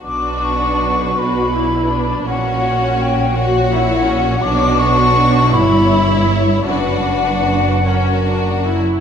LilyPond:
<<
  \new Staff \with { instrumentName = "Flute" } { \time 6/8 \key b \minor \tempo 4. = 54 d'''8 cis'''4 b''4. | fis''4 g''8 fis''4. | d'''8 cis'''4 b''4 r8 | fis''2~ fis''8 r8 | }
  \new Staff \with { instrumentName = "Violin section" } { \time 6/8 \key b \minor b'2. | cis''4. cis''4.~ | cis''4. cis''4. | b'4. ais'4~ ais'16 r16 | }
  \new Staff \with { instrumentName = "Violin section" } { \time 6/8 \key b \minor fis'4. d'4. | fis'4. fis'4. | fis'4. e'4. | fis'4. fis'4~ fis'16 r16 | }
  \new Staff \with { instrumentName = "Viola section" } { \time 6/8 \key b \minor d'4. fis'8 e'8 d'8 | cis'4. fis'8 e'8 cis'8 | d'4. e'4. | d'4. cis'8 d'8 e'8 | }
  \new Staff \with { instrumentName = "Cello section" } { \clef bass \time 6/8 \key b \minor b,2. | ais,2. | b,4. g,4. | fis,2~ fis,8. r16 | }
  \new Staff \with { instrumentName = "Double bass section" } { \clef bass \time 6/8 \key b \minor b,,2. | ais,,2. | b,,4. g,,4. | fis,,2~ fis,,8. r16 | }
>>